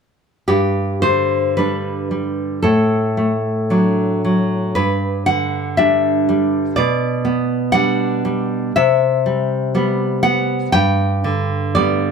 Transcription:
0.48 G2 G4
1.02 D3 C5
1.57 G3 D4 B4
2.11 G3
2.62 A2 A4
3.17 A3
3.70 F#3 D4
4.25 F#3
4.75 G2 B4
5.26 D3 F#5
5.77 G3 D4 E5
6.29 G3
6.76 B2 D5
7.25 B3
7.72 G3 D4 F#5
8.25 G3
8.76 C3 E5
9.26 G3
9.75 G3 B3
10.23 B3 F#5
10.72 G2 G5
11.24 D3
11.75 G3 B3 D5

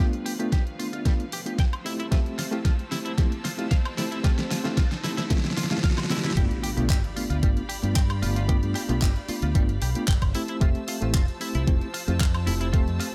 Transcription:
Already playing: F3 G3 B4, riser
0.00 A3 B3 D4 F4 F5
0.13 G2, closed hi-hat
0.26 G4, open hi-hat
0.39 B1 A3 B3 D4 F4 G4, closed hi-hat
0.52 G1 G4, kick, snare, closed hi-hat
0.67 closed hi-hat
0.79 A3 B3 D4 F4, muted fingered electric bass stroke, open hi-hat
0.93 D2 F4, closed hi-hat
1.05 G3 A3 B3 D4 F4, kick, snare, closed hi-hat
1.20 closed hi-hat
1.32 B1 G4, open hi-hat
1.45 A3 B3 D4 F4 G4, closed hi-hat
1.59 G5, kick, snare, closed hi-hat
1.73 closed hi-hat, high woodblock
1.85 F2 A3 C4 E4 G4 C5 A5 E6, open hi-hat
1.99 A1 E4, closed hi-hat
2.11 A3 C4 F4 G4 E5, kick, snare, closed hi-hat
2.26 closed hi-hat
2.39 F4, snare, open hi-hat
2.51 A1 A3 C4 E4 F4 G4, closed hi-hat
2.65 F4, kick, snare, closed hi-hat
2.79 closed hi-hat
2.91 A3 C4 E4 G4, snare, open hi-hat
3.05 C2 E4, closed hi-hat
3.17 F3 A3 C4 E4 G4, kick, snare, closed hi-hat
3.32 closed hi-hat
3.44 F4, snare, open hi-hat
3.57 F2 A3 C4 E4 F4 G4, closed hi-hat
3.71 F5, kick, snare, closed hi-hat
3.85 closed hi-hat, high woodblock
3.97 A3 C4 E4 G4, snare, open hi-hat
4.11 E4, closed hi-hat
4.24 A3 C4 F4 G4, kick, snare, closed hi-hat
4.38 F2, snare, closed hi-hat
4.51 F4, snare, open hi-hat
4.64 A1 A3 C4 E4 F4 G4, snare, closed hi-hat
4.77 F4, kick, snare, closed hi-hat
4.92 snare, closed hi-hat
5.03 A3 C4 E4 G4, snare, open hi-hat
5.17 C2 E4, snare, closed hi-hat
5.30 F3 A3 C4 E4 G4, kick, snare, closed hi-hat
5.38 snare
5.45 snare, closed hi-hat
5.51 snare
5.57 A1 F4, snare, open hi-hat
5.64 snare
5.71 A3 C4 E4 F4 G4, snare, closed hi-hat
5.77 snare
5.84 F5, kick, snare, closed hi-hat
5.91 snare
5.98 snare, closed hi-hat, high woodblock
6.04 snare
6.10 F2 A3 C4 E4 G4, snare, open hi-hat
6.17 snare
6.24 E4, snare, closed hi-hat
6.31 snare
6.37 G1 A3 B3 D4 F4 G4 D5 F5 B5, kick, closed hi-hat, impact
6.51 closed hi-hat
6.63 G4, open hi-hat
6.77 B1 A3 B3 D4 F4 G4, closed hi-hat
6.90 G1 G4, kick, clap, closed hi-hat
7.04 closed hi-hat
7.16 A3 B3 D4 F4, open hi-hat
7.30 D2 F4, closed hi-hat
7.43 G1 G3 A3 B3 D4 F4, kick, closed hi-hat
7.57 closed hi-hat
7.69 G4, open hi-hat
7.82 G2 A3 B3 D4 F4 G4, closed hi-hat
7.96 G5, kick, clap, closed hi-hat
8.10 closed hi-hat, high woodblock
8.22 G1 A3 B3 D4 F4, open hi-hat
8.36 F4, closed hi-hat
8.48 A3 B3 D4 F4 G4, kick, closed hi-hat
8.63 G2, closed hi-hat
8.75 G4, clap, open hi-hat
8.89 B1 A3 B3 D4 F4 G4, closed hi-hat
9.02 G1 G4, kick, clap, closed hi-hat
9.16 closed hi-hat
9.28 A3 B3 D4 F4, muted fingered electric bass stroke, open hi-hat
9.42 D2 F4, closed hi-hat
9.55 G1 G3 A3 B3 D4 F4, kick, closed hi-hat
9.69 closed hi-hat
9.82 B1 G4, open hi-hat
9.95 A3 B3 D4 F4 G4, muted fingered electric bass stroke, closed hi-hat
10.08 G1 G5, kick, clap, closed hi-hat
10.22 G1, kick, closed hi-hat, high woodblock
10.35 F3 A3 C4 E4 G4 C5 A5 E6, open hi-hat
10.48 E4, closed hi-hat
10.61 F1 A3 C4 F4 G4 E5, kick, closed hi-hat
10.75 closed hi-hat
10.88 F4, open hi-hat
11.01 A1 A3 C4 E4 F4 G4, closed hi-hat
11.14 F1 F4, kick, clap, closed hi-hat
11.28 closed hi-hat
11.40 A3 C4 E4 G4, open hi-hat
11.55 C2 E4, closed hi-hat
11.67 F1 F3 A3 C4 E4 G4, kick, closed hi-hat
11.81 closed hi-hat
11.94 F4, open hi-hat
12.08 F2 A3 C4 E4 F4 G4, closed hi-hat
12.21 F5, kick, clap, closed hi-hat
12.34 closed hi-hat, high woodblock
12.46 F1 A3 C4 E4 G4, open hi-hat
12.61 E4, closed hi-hat
12.73 A3 C4 F4 G4, kick, closed hi-hat
12.88 F2, closed hi-hat
13.00 F4, clap, open hi-hat

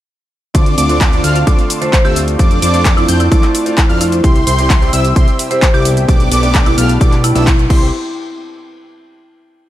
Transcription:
0.54 D2 D3 A3 C4 D4 F4 A4 C5 D5 F5 A5 D6, kick, closed hi-hat, shaker
0.66 closed hi-hat, shaker
0.78 D2 C4 D4 F4 A4 D5 D6, open hi-hat, shaker
0.89 D3 A3 C4 D4 F4, closed hi-hat, shaker
1.01 kick, clap, closed hi-hat, shaker
1.12 D3 A3 C4 D4 F4, shaker
1.24 D2 C4 D4 F4 A4 F5 F6, open hi-hat, shaker
1.36 closed hi-hat, shaker
1.46 D2 D3 A3 C4 D4 F4 A4 D5 D6, kick, closed hi-hat, shaker
1.59 closed hi-hat, shaker
1.70 open hi-hat, shaker
1.81 D3 A3 C4 D4 F4 C5, closed hi-hat, shaker
1.93 C5, kick, clap, closed hi-hat, shaker
2.05 D2 C4 D4 F4 G4 A4 E5 E6, shaker
2.16 A3 C4 D4 F4, open hi-hat, shaker
2.28 closed hi-hat, shaker
2.39 F2 A3 C4 D4 F4 A4 D5 A5 D6, kick, closed hi-hat, shaker
2.51 closed hi-hat, shaker
2.62 F2 C4 D4 F4 A4 D5 D6, open hi-hat, shaker
2.73 A3 C4 D4 F4, closed hi-hat, shaker
2.85 kick, clap, closed hi-hat, shaker
2.96 A3 C4 D4 E4 F4, shaker
3.08 F2 C4 D4 F4 A4 G5 G6, open hi-hat, shaker
3.20 E4, closed hi-hat, shaker
3.31 F2 A3 C4 D4 F4 A4 D5 D6, kick, closed hi-hat, shaker
3.43 E4, clap, closed hi-hat, shaker
3.55 open hi-hat, shaker
3.65 A3 C4 D4 F4, closed hi-hat, shaker
3.78 kick, clap, closed hi-hat, shaker
3.89 F2 C4 D4 F4 A4 F5 F6, shaker
4.00 A3 C4 D4 E4 F4, open hi-hat, shaker
4.12 E4, closed hi-hat, shaker
4.23 C2 C3 G3 C4 E4 G4 C5 E5 G5 C6 E6, kick, closed hi-hat, shaker
4.36 closed hi-hat, shaker
4.47 C2 E4 G4 C5 C6, open hi-hat, shaker
4.58 C3 G3 C4 E4 G4, closed hi-hat, shaker
4.70 kick, clap, closed hi-hat, shaker
4.81 C3 G3 C4 E4 G4, shaker
4.93 C2 E4 G4 E5 E6, open hi-hat, shaker
5.05 closed hi-hat, shaker
5.15 C2 C3 G3 C4 E4 G4 C5 C6, kick, closed hi-hat, shaker
5.28 closed hi-hat, shaker
5.39 open hi-hat, shaker
5.50 C3 G3 C4 E4 G4 C5, closed hi-hat, shaker
5.62 kick, clap, closed hi-hat, shaker
5.74 C2 E4 G4 D5 D6, shaker
5.85 B2 G3 C4 E4 G4, open hi-hat, shaker
5.97 closed hi-hat, shaker
6.08 B1 B2 A3 B3 D4 G4 A4 B4 D5 A5 D6, kick, closed hi-hat, shaker
6.20 closed hi-hat, shaker
6.31 B1 B3 D4 G4 A4 D5 D6, open hi-hat, shaker
6.42 B2 A3 B3 D4 G4, closed hi-hat, shaker
6.55 kick, clap, closed hi-hat, shaker
6.65 B2 A3 B3 D4 E4 G4, closed hi-hat, shaker
6.78 B1 B3 D4 G4 A4 F5 F6, open hi-hat, shaker
6.89 closed hi-hat, shaker
7.00 B1 B2 A3 B3 D4 G4 A4 D5 D6, kick, closed hi-hat, shaker
7.12 clap, closed hi-hat, shaker
7.24 E4, open hi-hat, shaker
7.35 B1 B2 A3 B3 D4 E4 G4 A4 E5 E6, closed hi-hat, shaker
7.47 kick, clap, closed hi-hat, shaker
7.59 shaker
7.68 C2 G3 C4 E4 G4 C5 E5 G5 C6, kick, crash

